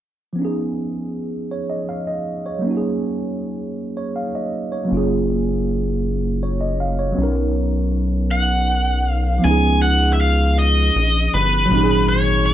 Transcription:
0.33 tine electric piano F3 B3
0.39 tine electric piano C#4 D#4
0.45 tine electric piano G#4
1.51 tine electric piano C#5
1.70 tine electric piano D#5
1.89 tine electric piano F5
2.07 tine electric piano D#5
2.46 tine electric piano C#5
2.59 tine electric piano F#3 A#3
2.65 tine electric piano C#4 D#4
2.71 tine electric piano F#4
2.77 tine electric piano G#4
3.97 tine electric piano C#5
4.16 tine electric piano F5
4.35 tine electric piano D#5
4.72 tine electric piano C#5
4.85 tine electric piano F#3 A#3
4.91 analog synth bass F#1, tine electric piano C#4 F4
4.97 tine electric piano G#4
6.43 tine electric piano C#5
6.61 tine electric piano D#5
6.80 tine electric piano F5
6.99 tine electric piano C#5
7.12 tine electric piano F#3 B3
7.18 analog synth bass B1, tine electric piano C#4 D#4
7.23 tine electric piano A#4
8.31 lead electric guitar F#5
9.08 lead electric guitar F5
9.38 tine electric piano F3 B3
9.44 analog synth bass C#2, tine electric piano C#4 D#4, lead electric guitar G#5
9.51 tine electric piano G#4
9.82 lead electric guitar F#5
10.13 lead electric guitar E5
10.21 lead electric guitar F5
10.59 lead electric guitar D#5
10.96 analog synth bass A#1
11.34 analog synth bass G1, lead electric guitar B4
11.65 tine electric piano A#2 F#3
11.71 analog synth bass G#1, tine electric piano C#4 D#4
11.77 tine electric piano G4
11.84 tine electric piano G#4
12.09 lead electric guitar C#5
12.46 lead electric guitar D#5

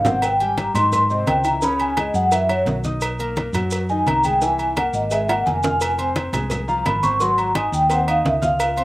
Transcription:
Already playing: fingered electric bass G#1
0.05 grand piano C3 C4 C5, vibraphone F#5, low bongo, low conga, low timbale, maracas
0.22 vibraphone G5, cowbell, high conga, low agogo, maracas
0.40 grand piano G3 G4 G5, vibraphone G#5, high conga, low agogo, maracas
0.57 cowbell, high conga, low timbale, low agogo, maracas
0.74 fingered electric bass G#2, grand piano D#3 D#4 D#5, vibraphone C6, cowbell, high conga, low conga, low agogo, maracas
0.92 vibraphone C6, cowbell, high conga, low conga, low agogo, maracas
1.10 grand piano C3 C4 C5, vibraphone D#5, high conga, maracas
1.27 fingered electric bass C#2, vibraphone G5, cowbell, high conga, low timbale, low agogo, maracas
1.44 grand piano E3 E4 E5, vibraphone A#5, low agogo, maracas
1.62 grand piano C#3 C#4 C#5, vibraphone B5, cowbell, high conga, maracas
1.79 vibraphone G#5, high conga, low agogo, maracas
1.97 grand piano G#3 G#4 G#5, vibraphone D#5, cowbell, high conga, low timbale, low agogo, maracas
2.14 fingered electric bass F#2, vibraphone F#5, high conga, maracas
2.32 grand piano E3 E4 E5, vibraphone E5, cowbell, high conga, low agogo, maracas
2.49 grand piano F#3 F#4 F#5, vibraphone C#5, high conga, low agogo, maracas
2.66 fingered electric bass B1, cowbell, high conga, low timbale, maracas
2.84 grand piano D#4 D#5 D#6, cowbell, high conga, maracas
3.01 cowbell, high conga, low agogo, maracas
3.19 grand piano A#3 A#4 A#5, high conga, low agogo, maracas
3.36 cowbell, high conga, low timbale, low agogo, maracas
3.53 fingered electric bass F#2, grand piano F#3 F#4 F#5, cowbell, high conga, low conga, low agogo, maracas
3.71 cowbell, high conga, low agogo, maracas
3.89 grand piano D#3 D#4 D#5, vibraphone G#5, high conga, maracas
4.06 fingered electric bass C2, vibraphone A#5, cowbell, high conga, low timbale, low agogo, maracas
4.24 grand piano G#3 G#4 G#5, vibraphone G5, high conga, low agogo, maracas
4.41 grand piano E3 E4 E5, vibraphone G#5, cowbell, high conga, maracas
4.59 high conga, low agogo, maracas
4.76 grand piano A#3 A#4 A#5, vibraphone F#5, cowbell, high conga, low timbale, low agogo, maracas
4.93 fingered electric bass G#1, vibraphone D#5, high conga, maracas
5.11 grand piano G#3 G#4 G#5, vibraphone E5, cowbell, high conga, low agogo, maracas
5.29 grand piano A#3 A#4 A#5, vibraphone F#5, high conga, high timbale, low agogo, maracas
5.46 fingered electric bass F1, vibraphone G#5, cowbell, high conga, maracas
5.63 grand piano F4 F5 F6, vibraphone G#5, cowbell, high conga, low timbale, maracas
5.81 cowbell, high conga, low agogo, maracas
5.98 grand piano C4 C5 C6, high conga, low agogo, maracas
6.16 cowbell, high conga, low timbale, low agogo, maracas
6.33 fingered electric bass C2, grand piano G#3 G#4 G#5, cowbell, high conga, low conga, low agogo, maracas
6.50 cowbell, high conga, low conga, low agogo, maracas
6.68 grand piano F3 F4 F5, vibraphone A#5, high conga, maracas
6.85 fingered electric bass G#1, vibraphone B5, cowbell, high conga, low timbale, low agogo, maracas
7.03 grand piano C4 C5 C6, vibraphone C#6, high conga, low agogo, maracas
7.20 grand piano F#3 F#4 F#5, vibraphone C6, cowbell, high conga, maracas
7.37 vibraphone A#5, high conga, low agogo, maracas
7.55 grand piano D#4 D#5 D#6, vibraphone G#5, cowbell, high conga, low timbale, low agogo, maracas
7.72 fingered electric bass D#2, vibraphone G5, high conga, maracas
7.89 grand piano C4 C5 C6, vibraphone F#5, cowbell, high conga, low agogo, maracas
8.07 grand piano D#4 D#5 D#6, vibraphone F5, high conga, low agogo, maracas
8.25 fingered electric bass C#2, vibraphone E5, cowbell, high conga, low timbale, maracas
8.41 grand piano F4 F5 F6, vibraphone F5, cowbell, high conga, maracas
8.60 cowbell, low agogo, maracas
8.77 grand piano C4 C5 C6, high conga, low agogo, maracas

